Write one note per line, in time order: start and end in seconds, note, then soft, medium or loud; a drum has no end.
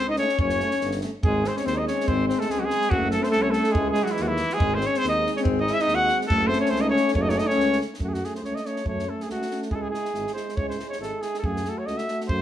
0.00 0.19 C#2 medium
0.08 0.16 D#4 medium
0.08 0.18 D#5 medium
0.15 0.26 A3 medium
0.15 0.24 C#4 medium
0.15 0.37 C#4 medium
0.15 0.37 C#5 medium
0.15 snare soft
0.29 snare soft
0.38 0.62 F#1 loud
0.38 0.98 C#4 medium
0.38 0.99 C#5 medium
0.38 kick medium
0.49 snare soft
0.60 0.69 A3 medium
0.60 0.69 C#4 medium
0.60 snare soft
0.71 snare soft
0.81 1.04 G1 medium
0.81 snare soft
0.91 snare soft
1.01 1.10 A3 medium
1.01 1.11 C#4 medium
1.01 snare soft
1.23 1.47 G#1 loud
1.23 1.46 G#3 medium
1.23 2.89 G#3 medium
1.23 2.94 C4 medium
1.23 1.49 G#4 medium
1.23 kick loud
1.44 1.55 C4 medium
1.44 1.58 C5 medium
1.44 snare soft
1.55 1.64 C#4 medium
1.55 1.66 C#5 medium
1.55 snare soft
1.64 1.89 D#2 medium
1.64 1.76 C4 medium
1.64 1.79 C5 medium
1.64 snare soft
1.75 1.84 D#4 medium
1.75 1.87 D#5 medium
1.85 2.08 C#4 medium
1.85 2.10 C#5 medium
1.85 snare soft
2.00 snare soft
2.06 2.31 G#1 loud
2.06 2.27 C4 medium
2.06 2.28 C5 loud
2.06 kick medium
2.28 2.40 C4 medium
2.28 2.41 C5 medium
2.28 snare soft
2.39 2.49 A3 medium
2.39 2.52 A4 medium
2.39 snare soft
2.48 2.73 C#2 medium
2.48 2.60 G#3 medium
2.48 2.61 G#4 medium
2.48 snare soft
2.59 2.63 F#3 medium
2.59 2.91 G#3 medium
2.59 2.66 F#4 medium
2.65 2.92 G#4 loud
2.70 snare soft
2.82 snare soft
2.89 3.15 F#1 loud
2.89 3.10 F#3 medium
2.89 3.78 C#4 medium
2.89 3.10 F#4 medium
2.89 kick medium
2.93 3.78 A3 medium
3.11 3.22 A3 medium
3.11 3.25 A4 medium
3.11 snare soft
3.21 3.28 C4 medium
3.21 3.30 C5 medium
3.21 snare soft
3.29 3.43 A3 medium
3.29 3.44 A4 loud
3.29 snare soft
3.34 3.57 C2 loud
3.41 3.51 C#4 medium
3.41 3.52 C#5 medium
3.50 3.72 A3 medium
3.50 3.73 A4 medium
3.50 snare soft
3.64 snare soft
3.71 3.92 G#3 medium
3.71 3.90 G#4 loud
3.75 3.99 C#2 loud
3.75 4.45 G#3 medium
3.75 4.45 E4 medium
3.75 kick loud
3.90 4.05 G#3 medium
3.90 4.05 G#4 medium
3.94 snare soft
4.03 4.15 F#3 medium
4.03 4.13 F#4 medium
4.03 snare soft
4.11 4.28 E3 medium
4.11 4.24 E4 medium
4.17 4.42 D#2 medium
4.17 snare soft
4.22 4.31 F#3 medium
4.22 4.29 F#4 medium
4.28 4.59 E3 medium
4.28 4.55 E4 medium
4.37 snare soft
4.50 4.76 G#4 medium
4.50 snare soft
4.58 4.84 G#1 loud
4.58 4.80 G#3 medium
4.58 6.26 G#3 medium
4.58 6.30 C4 medium
4.58 kick loud
4.75 4.89 C4 medium
4.75 4.88 C5 loud
4.81 snare soft
4.86 4.98 C#4 medium
4.86 4.99 C#5 medium
4.94 5.09 C4 medium
4.94 5.08 C5 loud
4.94 snare soft
5.04 5.27 D#2 medium
5.04 snare soft
5.09 5.32 D#4 medium
5.09 5.31 D#5 loud
5.26 snare soft
5.37 5.42 C#4 medium
5.37 5.40 C#5 medium
5.37 snare soft
5.41 5.60 C4 medium
5.45 5.68 G#1 loud
5.45 kick loud
5.60 5.73 D#4 medium
5.60 5.75 D#5 medium
5.67 snare soft
5.71 5.83 E4 medium
5.71 5.83 E5 medium
5.79 5.96 D#4 loud
5.79 5.97 D#5 loud
5.79 snare soft
5.88 6.11 D#2 medium
5.88 snare soft
5.95 6.18 F#4 medium
5.95 6.18 F#5 loud
6.08 snare soft
6.21 snare soft
6.27 6.53 F#1 loud
6.27 6.51 A3 medium
6.27 7.11 A3 medium
6.27 7.14 C#4 medium
6.27 6.49 A4 loud
6.27 kick medium
6.47 6.60 C4 medium
6.47 6.60 C5 loud
6.53 snare soft
6.60 6.72 C#4 medium
6.60 6.72 C#5 medium
6.66 snare soft
6.70 6.94 C#2 medium
6.70 6.84 C4 medium
6.70 6.82 C5 loud
6.76 snare soft
6.81 6.92 D#4 medium
6.81 6.89 D#5 medium
6.90 7.12 C#4 medium
6.90 7.11 C#5 loud
6.97 snare soft
7.08 snare soft
7.14 7.37 F#1 loud
7.14 7.82 A3 medium
7.14 7.82 C#4 medium
7.14 7.27 C#4 medium
7.14 7.24 C#5 medium
7.14 kick medium
7.22 7.36 D#4 medium
7.22 7.31 D#5 medium
7.29 7.40 C#5 medium
7.29 snare soft
7.35 7.43 C#4 medium
7.35 snare soft
7.39 7.49 D#4 medium
7.39 7.48 D#5 medium
7.47 7.78 C#4 loud
7.47 7.78 C#5 loud
7.47 snare soft
7.56 7.80 C#2 medium
7.56 snare soft
7.72 snare soft
7.81 snare soft
7.94 snare soft
7.99 8.23 F#2 medium
7.99 8.21 A3 medium
7.99 8.20 C#4 soft
7.99 kick medium
8.04 8.10 F#4 medium
8.09 8.15 G#4 medium
8.14 8.26 F#4 medium
8.14 snare soft
8.20 8.42 A3 soft
8.20 8.42 C#4 soft
8.20 snare soft
8.25 8.35 G#4 medium
8.35 8.44 C5 medium
8.35 snare soft
8.42 8.54 C#2 medium
8.42 8.64 A3 soft
8.42 8.63 C#4 soft
8.42 8.56 C#5 medium
8.42 snare soft
8.55 8.68 D#5 medium
8.55 snare soft
8.64 8.85 A3 soft
8.64 8.84 C#4 medium
8.64 8.86 C#5 medium
8.64 snare soft
8.76 snare soft
8.84 9.08 F#2 medium
8.84 9.06 A3 medium
8.84 9.06 C#4 medium
8.84 9.11 C#5 medium
8.84 kick medium
8.99 snare soft
9.06 9.28 A3 soft
9.06 9.27 C#4 medium
9.06 9.24 A4 medium
9.20 9.30 G#4 medium
9.20 snare soft
9.28 9.40 C#2 medium
9.28 9.49 A3 medium
9.28 9.49 C#4 medium
9.28 9.61 F#4 medium
9.28 snare soft
9.42 snare soft
9.49 9.72 A3 medium
9.49 9.69 C#4 medium
9.49 snare soft
9.62 snare soft
9.70 9.94 C#2 medium
9.70 9.93 G#3 medium
9.70 9.91 E4 medium
9.70 9.77 G#4 medium
9.70 kick medium
9.75 9.83 A4 medium
9.82 9.90 G#4 medium
9.91 10.13 G#3 medium
9.91 10.13 E4 medium
9.91 10.32 G#4 medium
9.91 snare soft
10.05 snare soft
10.14 10.26 G#1 medium
10.14 10.35 G#3 medium
10.14 10.34 E4 medium
10.14 snare soft
10.27 snare soft
10.34 10.57 G#3 medium
10.34 10.55 E4 soft
10.34 10.58 C5 medium
10.34 snare soft
10.49 snare soft
10.56 10.80 C#2 medium
10.56 10.79 G#3 medium
10.56 10.77 E4 soft
10.56 10.69 C#5 medium
10.56 kick medium
10.69 10.89 C5 medium
10.69 snare soft
10.78 11.00 G#3 soft
10.78 10.99 E4 soft
10.78 snare soft
10.89 10.99 C#5 medium
10.89 snare soft
10.99 11.11 G#1 medium
10.99 11.21 G#3 soft
10.99 11.21 E4 soft
10.99 11.23 A4 medium
10.99 snare soft
11.21 11.43 G#3 soft
11.21 11.41 E4 soft
11.21 11.38 G#4 medium
11.21 snare soft
11.34 snare soft
11.39 11.67 F#2 medium
11.39 11.64 F#4 soft
11.39 11.47 A4 medium
11.44 11.65 A3 soft
11.44 11.71 G#4 medium
11.44 kick medium
11.56 snare soft
11.65 11.86 A3 medium
11.65 11.86 F#4 soft
11.65 snare soft
11.69 11.80 A4 medium
11.79 11.88 C#5 medium
11.86 11.98 C#2 medium
11.86 12.07 A3 soft
11.86 12.08 F#4 medium
11.86 11.99 D#5 medium
11.86 snare soft
11.98 12.19 E5 medium
11.98 snare soft
12.08 12.29 A3 medium
12.08 12.30 F#4 medium
12.08 snare soft
12.21 snare soft
12.28 12.42 F#2 medium
12.28 12.42 A3 medium
12.28 12.42 F#4 medium
12.28 12.42 C5 medium
12.28 kick medium